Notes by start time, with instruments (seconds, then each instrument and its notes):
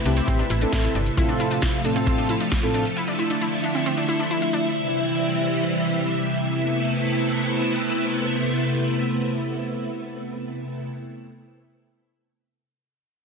Already playing: string machine C3 A3 E4 B4
0.05 fm bass C2, analog polysynth C4 E4 G4, synth arpeggio sound D4, closed hi-hat
0.17 synth arpeggio sound C4, closed hi-hat
0.28 fm bass A1, synth arpeggio sound C4, kick, closed hi-hat
0.39 synth arpeggio sound D4
0.50 fm bass A1, synth arpeggio sound E4, closed hi-hat
0.61 analog polysynth C4 E4 A4, synth arpeggio sound D4, closed hi-hat
0.73 fm bass A1, synth arpeggio sound E4, kick, snare, closed hi-hat
0.84 synth arpeggio sound E4
0.95 fm bass G1, synth arpeggio sound D4, closed hi-hat
1.06 closed hi-hat
1.17 analog polysynth A2 C4 F4 A4, string machine F3 F4, synth arpeggio sound E4, kick, closed hi-hat
1.29 synth arpeggio sound D4
1.40 synth arpeggio sound E4, closed hi-hat
1.51 synth arpeggio sound D4, closed hi-hat
1.62 synth arpeggio sound E4, kick, snare, closed hi-hat
1.84 analog polysynth A2 C4 F4 A4, synth arpeggio sound D4, closed hi-hat
1.96 synth arpeggio sound C4, closed hi-hat
2.07 synth arpeggio sound C4, kick, closed hi-hat
2.18 synth arpeggio sound D4
2.29 synth arpeggio sound E4, closed hi-hat
2.40 synth arpeggio sound D4, closed hi-hat
2.52 synth arpeggio sound E4, kick, snare, closed hi-hat
2.63 analog polysynth A2 C4 F4 A4, synth arpeggio sound E4
2.74 synth arpeggio sound D4, closed hi-hat
2.85 closed hi-hat
2.97 string machine D3 E4, synth arpeggio sound E4
3.08 synth arpeggio sound D4
3.19 synth arpeggio sound E4
3.30 synth arpeggio sound D4
3.41 synth arpeggio sound E4
3.64 synth arpeggio sound D4
3.75 synth arpeggio sound C4
3.86 synth arpeggio sound C4
3.97 synth arpeggio sound D4
4.08 synth arpeggio sound E4
4.20 synth arpeggio sound D4
4.31 synth arpeggio sound E4
4.42 synth arpeggio sound E4
4.53 synth arpeggio sound D4
4.76 string machine C3 E3 G3
6.55 string machine C3 A3 B3 E4